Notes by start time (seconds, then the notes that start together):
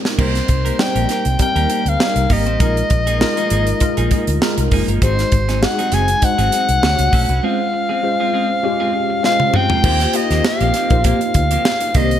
Already playing: G#3 C4 D#4 F4 A#4
0.05 snare
0.18 C2 G3 A#3 C4 D#4 G4 A#4 C5, kick, crash
0.35 muted clean electric guitar stroke, snare, closed hi-hat
0.48 C2, muted clean electric guitar stroke, kick, closed hi-hat
0.65 A#3 D#4 G4 A#4, closed hi-hat
0.78 G3 C4 D#4 C5 G5, muted clean electric guitar stroke, snare
0.95 A#1 A#3 D#4 G4 A#4, closed hi-hat
1.09 A#3 D#4 G4 A#4, snare, closed hi-hat
1.25 C2, muted clean electric guitar stroke, closed hi-hat
1.39 G3 C4 D#4 A#4 G5, muted clean electric guitar stroke, kick, closed hi-hat
1.55 D#2 A#3 D#4 G4 A#4, closed hi-hat
1.70 A#3 D#4 G4 A#4, closed hi-hat
1.86 D2 F5, muted clean electric guitar stroke, closed hi-hat
1.99 G3 C4 D#4 A#4, muted clean electric guitar stroke, snare
2.16 C2, muted clean electric guitar stroke, closed hi-hat
2.30 G#1 A#3 D#4 G4 A#4 D#5, kick, open hi-hat
2.46 A1 A#3 D#4 G4 C5, closed hi-hat
2.59 A#1 F3 G#3 A#3 D#4 F4 G#4 A#4, kick, closed hi-hat
2.77 muted clean electric guitar stroke, closed hi-hat
2.90 A#1, muted clean electric guitar stroke, kick, closed hi-hat
3.07 F3 A#3 D#4 G#4, closed hi-hat
3.20 G#3 D#4 F4 A#4, snare
3.37 F3 A#3 D#4 G#4, closed hi-hat
3.50 G#1 F3 A#3 D#4 G#4, closed hi-hat
3.67 muted clean electric guitar stroke, closed hi-hat
3.80 G#3 D#4 F4 A#4, muted clean electric guitar stroke, kick, closed hi-hat
3.97 A#1 F3 A#3 D#4 G#4, closed hi-hat
4.11 F3 A#3 D#4 G#4, kick, closed hi-hat
4.27 D2, muted clean electric guitar stroke, closed hi-hat
4.41 G#3 D#4 F4 A#4, muted clean electric guitar stroke, snare
4.58 C2, muted clean electric guitar stroke, closed hi-hat
4.71 F#1 F3 A#3 D#4 G#4, kick, open hi-hat
4.88 G1 F3 A#3 D#4 A#4, closed hi-hat
5.02 G#1 F#3 G#3 C4 D#4 F#4 G#4 C5, kick, closed hi-hat
5.18 muted clean electric guitar stroke, snare, closed hi-hat
5.32 G#1, muted clean electric guitar stroke, kick, closed hi-hat
5.49 F#3 C4 D#4 G#4, snare, closed hi-hat
5.62 G#3 D#4 F#4 G#4 F#5, muted clean electric guitar stroke, snare
5.79 F#3 C4 D#4 G#4, closed hi-hat
5.92 F#1 F#3 C4 D#4 G#4 G#5, snare, closed hi-hat
6.08 muted clean electric guitar stroke, closed hi-hat
6.22 G#3 D#4 F#4 C5 F#5, muted clean electric guitar stroke, kick, closed hi-hat
6.38 G#1 F#3 C4 D#4 G#4, closed hi-hat
6.52 F#3 C4 D#4 G#4, closed hi-hat
6.69 C2, muted clean electric guitar stroke, closed hi-hat
6.82 D2 A3 D4 F#4 C#5, muted clean electric guitar stroke, snare
6.99 C#2, muted clean electric guitar stroke, closed hi-hat
7.13 B1 A3 C#4 F#4 A4, kick, open hi-hat
7.29 C2 A3 C#4 F#4 B4, closed hi-hat
7.43 G#3 C4 C#4 F4 G#4 C5 F5
7.60 muted clean electric guitar stroke
7.73 muted clean electric guitar stroke
7.89 G#3 C4 F4 G#4
8.03 G#3 C#4 F4 C5, muted clean electric guitar stroke
8.20 G#3 C4 F4 G#4
8.33 G#3 C4 F4 G#4
8.50 muted clean electric guitar stroke
8.63 G#3 C#4 F4 G4, muted clean electric guitar stroke
8.80 G#3 C4 F4 G#4
8.94 muted clean electric guitar stroke
9.10 muted clean electric guitar stroke
9.23 G#3 C#4 F4 C5 F5, muted clean electric guitar stroke, snare
9.40 muted clean electric guitar stroke, high tom
9.54 G#3 C4 F4 G#4 G5, mid tom
9.70 G#3 C4 F4 A#4, floor tom
9.83 D#2 F3 A#3 C4 D#4 F4 G4 C5, kick, crash
10.00 muted clean electric guitar stroke, snare, closed hi-hat
10.13 A#3 D#4 F4 G4 D#5, muted clean electric guitar stroke, closed hi-hat
10.30 D#2 F3 A#3 C4 G4, snare, closed hi-hat
10.45 F5, muted clean electric guitar stroke, snare
10.61 A#1 F3 A#3 C4 G4, closed hi-hat
10.74 F3 A#3 C4 G4, snare, closed hi-hat
10.90 A#1 A#3 D#4 F4 G4 C5, muted clean electric guitar stroke, kick, closed hi-hat
11.04 F3 A#3 C4 G4 F5, kick, closed hi-hat
11.21 muted clean electric guitar stroke, closed hi-hat
11.34 D2, muted clean electric guitar stroke, kick, closed hi-hat
11.51 F3 A#3 C4 G4, closed hi-hat
11.65 muted clean electric guitar stroke, snare
11.80 muted clean electric guitar stroke, closed hi-hat
11.94 C2 D#3 A#3 C4 D4 D#4 G4 C5 D#5, kick, closed hi-hat
12.11 muted clean electric guitar stroke, closed hi-hat